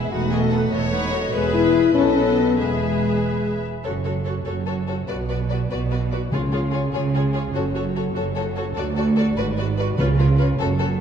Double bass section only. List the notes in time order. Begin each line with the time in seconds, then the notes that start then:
0.10 E1
0.71 E1
1.33 E1
1.95 B1
2.58 E1
3.85 F#1
4.46 F#1
5.08 B1
5.71 B1
6.33 C#2
6.94 C#2
7.55 F#1
8.16 F#1
8.77 D2
9.37 G#1
9.98 C#2
10.60 F#1